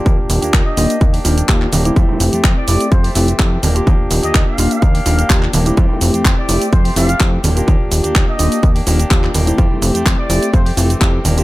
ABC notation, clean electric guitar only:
X:1
M:4/4
L:1/16
Q:"Swing 16ths" 1/4=126
K:F
V:1 name="Clean electric guitar"
[F,B,DG] [B,DG]2 [B,DG] [F,B,D] [B,DG]4 [B,DG] [F,B,DG]2 [F,G]2 [F,B,DG] [B,DG] | [A,CG]3 [A,CG] E, [A,CG]4 [A,CG] [E,A,CG]2 [E,A,G]2 [F,B,DG] [B,DG] | [F,B,DG]3 [B,DG] [F,B,] [B,DG]4 [B,DG] [F,B,DG] [B,DG] F,2 [F,B,DG] [B,DG] | [E,A,CG]3 [A,CG] [E,A,CG] [A,CG]4 [A,CG] [E,A,CG] [A,CG] [E,A,CG]2 [F,B,DG] [B,DG] |
[F,B,DG]3 [B,DG] F, [B,DG]4 [B,DG] [F,B,DG] [B,DG] [F,B,DG]2 [F,B,DG] [B,DG] | [E,A,CG]3 [A,CG] [E,C] [A,CG]4 [A,CG] [E,A,CG]2 [E,A,CG]2 [F,B,DG] [B,DG] |]